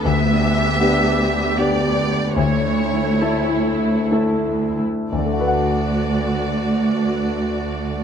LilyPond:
<<
  \new Staff \with { instrumentName = "Violin section" } { \time 3/4 \key d \major \tempo 4 = 67 e''2 d''4 | cis''2 r4 | d''2. | }
  \new Staff \with { instrumentName = "Harp" } { \time 3/4 \key d \major << { \tuplet 3/2 { <d b b'>8 d'8 g'8 b'8 d''8 g''8 d''8 b'8 g'8 } | \tuplet 3/2 { d8 a8 e'8 a'8 e'8 e''8 a'8 e'8 a8~ } | a2. | } \\ { r2. | r2. | <d a d' fis' b' fis''>2. | } >> }
  \new Staff \with { instrumentName = "Grand piano" } { \time 3/4 \key d \major d,4 <b d' g'>4 <b d' g'>4 | d,4 <a e' a'>4 <a e' a'>4 | <d, d a fis' b' fis''>2. | }
  \new Staff \with { instrumentName = "Viola section" } { \time 3/4 \key d \major <b g'>2. | <a e'>2~ <a e'>8. r16 | <a fis'>2. | }
  \new Staff \with { instrumentName = "Cello section" } { \clef bass \time 3/4 \key d \major d,2.~ | d,2~ d,8. r16 | d,2. | }
>>